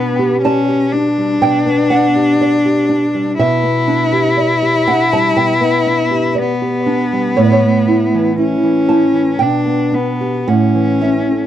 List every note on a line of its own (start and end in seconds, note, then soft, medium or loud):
0.00 1.37 B2 medium
0.00 0.42 B3 medium
0.00 0.33 D4 medium
0.00 0.39 B5 loud
0.19 0.58 G4 medium
0.42 0.93 C#4 medium
0.42 0.83 D5 medium
0.42 1.38 A5 loud
0.69 1.07 G4 medium
0.92 3.38 D4 medium
0.92 1.32 D4 medium
1.18 1.57 G3 soft
1.42 3.35 B2 medium
1.42 1.89 G5 medium
1.66 2.06 B3 medium
1.90 2.30 D4 medium
1.90 3.35 F#5 medium
2.16 2.56 G4 medium
2.41 2.81 D5 medium
2.66 3.05 G4 medium
2.89 3.29 D4 medium
3.15 3.39 G3 medium
3.38 5.33 B2 medium
3.38 6.40 E4 medium
3.38 4.84 E5 loud
3.63 4.03 B3 medium
3.88 4.27 D4 medium
4.13 4.52 G4 medium
4.37 4.77 D5 medium
4.62 5.02 G4 medium
4.88 5.28 D4 medium
4.88 5.12 F#5 medium
5.13 5.53 G3 medium
5.13 5.36 A5 medium
5.36 7.35 B2 medium
5.36 5.85 G5 medium
5.61 6.02 B3 medium
5.87 6.27 D4 medium
6.11 6.52 G4 medium
6.35 8.40 B3 medium
6.35 6.77 D5 medium
6.62 7.03 G4 medium
6.86 7.28 D4 medium
7.13 7.39 G3 medium
7.37 9.37 A2 medium
7.37 7.44 C#5 medium
7.45 7.52 D5 medium
7.52 8.86 C#5 medium
7.63 8.04 A3 medium
7.88 8.29 E4 medium
8.14 8.55 E3 soft
8.38 9.44 C#4 medium
8.38 8.79 E4 medium
8.63 9.05 E3 medium
8.89 9.31 E4 medium
8.89 9.39 A5 medium
9.14 9.39 E3 soft
9.39 10.44 B2 medium
9.39 9.96 D4 medium
9.39 10.43 G5 medium
9.66 10.09 B3 soft
9.92 10.50 B3 medium
9.92 10.36 D4 soft
10.21 10.48 G4 medium
10.48 11.47 A2 medium
10.48 11.47 C#4 medium
10.48 11.01 F#5 medium
10.75 11.20 E3 soft
11.01 11.47 C#4 soft
11.01 11.47 E5 medium
11.32 11.47 A4 soft